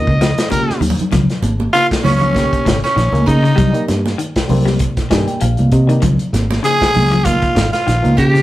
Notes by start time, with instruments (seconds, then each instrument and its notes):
Already playing: reed electric piano C#4 F4 A#4, trumpet D#5
0.07 fingered electric bass C#2, kick
0.21 clean electric guitar F3, snare, closed hi-hat, claves
0.38 snare, closed hi-hat
0.50 clean electric guitar C#3, reed electric piano C#4 F4 G4, trumpet A#4, kick, closed hi-hat, high conga
0.61 high conga
0.69 snare, high conga, claves
0.80 fingered electric bass D#2, clean electric guitar D#3, open hi-hat, low conga
0.90 low conga
0.98 muted fingered electric bass stroke, closed hi-hat, low conga
1.12 fingered electric bass C#2, clean electric guitar F3, kick, snare, closed hi-hat, low conga
1.30 snare, closed hi-hat
1.42 fingered electric bass G#1, closed hi-hat, high conga
1.60 high conga
1.73 clean electric guitar C#3, reed electric piano A#3 D#4 F4, tenor saxophone F4, mandolin F4, closed hi-hat
1.91 kick, snare, closed hi-hat
2.04 fingered electric bass C#2, tenor saxophone C#4, mandolin C#4, snare, open hi-hat, high conga, low conga
2.21 clean electric guitar F3, closed hi-hat, low conga
2.35 reed electric piano A#3 D#4 G4, kick, snare, closed hi-hat, high conga
2.53 kick, closed hi-hat
2.65 fingered electric bass G#1, clean electric guitar C#3, kick, snare, closed hi-hat
2.84 mandolin C#4, tenor saxophone C#4, snare, closed hi-hat
2.96 fingered electric bass A#1, clean electric guitar D#3, snare, closed hi-hat
3.12 fingered electric bass C#2, reed electric piano A#3 D#4 G#4, closed hi-hat, high conga
3.26 fingered electric bass C#3, mandolin D#4, tenor saxophone D#4, kick, closed hi-hat, high conga
3.43 clean electric guitar C#3, closed hi-hat
3.56 fingered electric bass C2, clean electric guitar G3, kick, closed hi-hat, low conga
3.73 reed electric piano G3 A#3 D#4, closed hi-hat
3.88 fingered electric bass G2, snare, closed hi-hat, high conga
4.06 snare, high conga
4.18 clean electric guitar D#3, closed hi-hat
4.36 kick, snare, closed hi-hat
4.48 fingered electric bass C2, reed electric piano G3 A#3 C4, open hi-hat, high conga, low conga
4.65 clean electric guitar G3, snare
4.79 kick, closed hi-hat
4.97 kick, snare, closed hi-hat
5.10 fingered electric bass G2, clean electric guitar D#3, reed electric piano G3 A#3 D#4 G#5, kick, snare, closed hi-hat
5.28 reed electric piano G5, closed hi-hat
5.41 fingered electric bass A#1, clean electric guitar F3, reed electric piano F5, closed hi-hat
5.57 fingered electric bass C2, closed hi-hat, high conga
5.72 fingered electric bass C3, reed electric piano D#5, kick, closed hi-hat
5.87 clean electric guitar D#3, reed electric piano G3 A#3 D#4, closed hi-hat
6.02 fingered electric bass C#2, clean electric guitar F3, kick, closed hi-hat, low conga
6.19 closed hi-hat
6.33 fingered electric bass G#1, snare, closed hi-hat, high conga
6.51 snare, high conga
6.63 clean electric guitar C#3, reed electric piano F3 A#3 D#4, tenor saxophone G#4, mandolin G#4, closed hi-hat
6.81 kick, snare, closed hi-hat
6.94 fingered electric bass C#2, open hi-hat, high conga, low conga
7.11 clean electric guitar F3, closed hi-hat, low conga
7.25 reed electric piano F3 A#3 D#4, tenor saxophone F4, mandolin F4, kick, closed hi-hat, high conga
7.42 kick, closed hi-hat
7.55 fingered electric bass G#1, muted clean electric guitar stroke, kick, snare, closed hi-hat
7.72 tenor saxophone F4, mandolin F4, snare, closed hi-hat
7.87 fingered electric bass A#1, clean electric guitar D#3, snare, closed hi-hat
8.02 fingered electric bass C#2, reed electric piano F3 A#3 D#4, closed hi-hat, high conga
8.17 fingered electric bass C#3, mandolin G4, tenor saxophone G4, kick, closed hi-hat
8.34 clean electric guitar C#3, snare, closed hi-hat